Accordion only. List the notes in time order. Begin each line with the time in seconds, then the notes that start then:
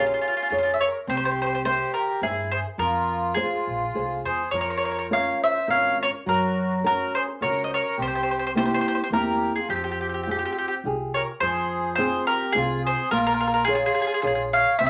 Already playing: C#4
0.74 C5
0.86 A#4
1.11 G4
1.68 G4
1.96 G4
2.24 E4
2.54 G#4
2.82 F4
3.39 F4
4.26 G#4
4.54 A#4
5.11 C#5
5.42 C5
5.70 C#5
5.99 A#4
6.26 F#4
6.86 F#4
7.14 G#4
7.42 A#4
7.66 C5
7.73 A#4
7.97 G4
8.55 G4
9.13 G4
9.57 F4
9.70 C4
11.15 A#4
11.42 G#4
11.98 G#4
12.27 G4
12.55 F4
12.84 G#4
13.12 F4
13.66 F4
14.52 C#5
14.78 C5